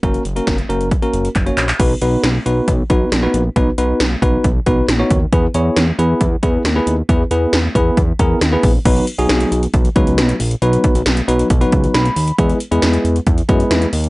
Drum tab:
CC |----------------|x---------------|----------------|----------------|
HH |xxxxxxxxxxxxxxxx|x-x-x-x-x-x-x-x-|x-x-x-x-x-x-x-x-|x-x-x-x-x-x-x-x-|
CP |------------x-xx|----------------|----------------|----------------|
SD |----o-----------|----o-------o---|----o-------o---|----o-------o---|
BD |o---o---o---o---|o-------o-o-----|o-----o-o-o---o-|o-------o-o-----|

CC |----------------|x---------------|----------------|----------------|
HH |x-x-x-x-x-x-x-o-|xxxxxxxxxxxxxxox|xxxxxxxxxxxxxxox|xxxxxxxxxxxxxxox|
CP |----------------|----------------|----------------|----------------|
SD |----o-------o---|----o-------o---|----o-------o---|----o-------o---|
BD |o-----o-o-o---o-|o-------o-o-----|--o-----o-o-----|o-------o-o-----|